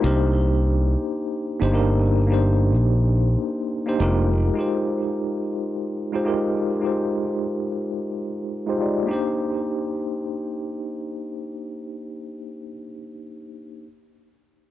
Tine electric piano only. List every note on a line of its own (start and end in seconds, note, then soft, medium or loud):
0.00 1.40 A#3 medium
0.00 1.41 D4 medium
0.00 1.42 D#4 medium
0.05 1.43 G4 medium
0.05 1.44 C5 medium
1.60 1.70 A#3 medium
1.60 1.70 D4 medium
1.60 1.70 D#4 medium
1.60 1.71 G4 medium
1.60 1.71 C5 medium
1.72 2.26 A#3 medium
1.72 2.27 D4 medium
1.72 2.27 D#4 medium
1.72 2.27 G4 medium
1.72 2.28 A#4 medium
2.27 3.67 A#3 medium
2.27 3.68 D4 medium
2.27 3.69 D#4 medium
2.32 3.69 G4 medium
2.32 3.70 C5 medium
3.86 3.96 A#3 medium
3.86 3.97 D4 medium
3.86 3.97 D#4 medium
3.86 3.97 G4 medium
3.86 3.98 C5 medium
3.98 4.52 G#3 medium
3.98 4.53 D#4 medium
3.98 4.54 F4 medium
3.98 4.54 G4 medium
3.98 4.55 A#4 medium
4.54 5.94 G#3 medium
4.54 5.94 D#4 medium
4.54 5.95 F4 medium
4.59 5.96 G4 medium
4.59 5.97 C5 medium
6.12 6.23 G#3 medium
6.12 6.23 D#4 medium
6.12 6.23 F4 medium
6.12 6.24 G4 medium
6.12 6.24 C5 medium
6.24 6.78 G#3 medium
6.24 6.79 D#4 medium
6.24 6.80 F4 medium
6.24 6.80 G4 medium
6.24 6.81 A#4 medium
6.80 8.20 G#3 medium
6.80 8.21 D#4 medium
6.80 8.21 F4 medium
6.85 8.22 G4 medium
6.85 8.23 C5 medium
8.66 8.77 G#3 medium
8.66 8.77 D#4 medium
8.66 8.78 F4 medium
8.66 8.78 G4 medium
8.66 8.78 C5 medium
8.79 9.05 G#3 medium
8.79 9.06 D#4 medium
8.79 9.06 F4 medium
8.79 9.06 G4 medium
8.79 9.07 D5 medium
9.03 12.60 A#3 medium
9.03 12.63 D4 medium
9.09 12.65 D#4 medium
9.09 12.68 G4 medium
9.13 12.70 C5 medium